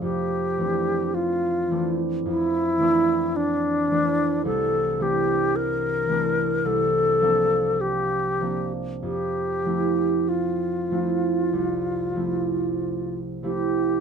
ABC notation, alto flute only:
X:1
M:4/4
L:1/16
Q:1/4=53
K:F
V:1 name="Alto flute"
G4 F3 z E4 D4 | A2 G2 B4 A4 G3 z | G4 F8- F2 G2 |]